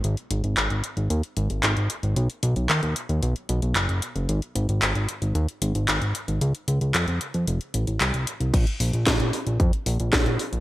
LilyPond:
<<
  \new Staff \with { instrumentName = "Analog synth bass" } { \clef bass \time 4/4 \key gis \dorian \tempo 4 = 113 gis,,16 r16 gis,,16 gis,,16 gis,,16 gis,,16 r16 gis,,16 dis,16 r16 gis,,16 gis,,16 gis,,16 gis,,16 r16 gis,,16 | b,,16 r16 b,,16 b,,16 dis,16 dis,16 r16 dis,16 b,,16 r16 b,,16 b,,16 fis,,16 fis,,16 r16 fis,,16 | gis,,16 r16 gis,,16 gis,,16 gis,,16 gis,,16 r16 gis,,16 dis,16 r16 gis,,16 gis,,16 gis,,16 gis,,16 r16 gis,,16 | cis,16 r16 cis,16 cis,16 eis,16 eis,16 r16 eis,16 f,,16 r16 a,,16 a,,16 c,16 c,16 r16 c,16 |
\key c \phrygian bes,,16 r16 bes,,16 bes,,16 bes,,16 bes,,16 r16 bes,,16 f,16 r16 bes,,16 bes,,16 bes,,16 bes,,16 r16 bes,,16 | }
  \new DrumStaff \with { instrumentName = "Drums" } \drummode { \time 4/4 hh16 hh16 hh16 hh16 <hc hh>16 hh16 hh16 hh16 hh16 hh16 hh16 hh16 <hc hh>16 hh16 hh16 hh16 | hh16 hh16 hh16 hh16 <hc hh>16 hh16 hh16 hh16 hh16 hh16 hh16 hh16 <hc hh>16 hh16 hh16 hh16 | hh16 hh16 hh16 hh16 <hc hh>16 hh16 hh16 hh16 hh16 hh16 hh16 hh16 <hc hh>16 hh16 hh16 hh16 | hh16 hh16 hh16 hh16 <hc hh>16 hh16 hh16 hh16 hh16 hh16 hh16 hh16 <hc hh>16 hh16 hh16 hh16 |
<cymc hh bd>16 hh16 hho16 hh16 <hc hh bd sn>16 hh16 hho16 hh16 <hh bd>16 hh16 hho16 hh16 <hc hh bd sn>16 hh16 hho16 hh16 | }
>>